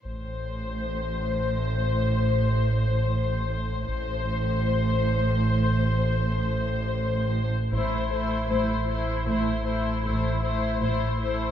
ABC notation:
X:1
M:5/4
L:1/16
Q:1/4=78
K:Am
V:1 name="Violin section"
c16- c4 | c16- c3 z | c2 c2 c2 c2 c2 c2 c2 c2 c2 c2 |]
V:2 name="Viola section"
z16 z4 | z16 z4 | [A,E]2 [A,E]2 [A,E]2 [A,E]2 [A,E]2 [A,E]2 [A,E]2 [A,E]2 [A,E]2 [A,E]2 |]
V:3 name="Cello section" clef=bass
A,,16- A,,4 | A,,16- A,,3 z | A,,4 A,,4 A,,4 A,,4 A,,4 |]
V:4 name="Double bass section" clef=bass
A,,,16- A,,,4 | A,,,16- A,,,3 z | A,,,4 A,,,4 A,,,4 A,,,4 A,,,4 |]
V:5 name="Sub bass" clef=bass
A,,,16- A,,,4 | A,,,16- A,,,4 | A,,,16- A,,,4 |]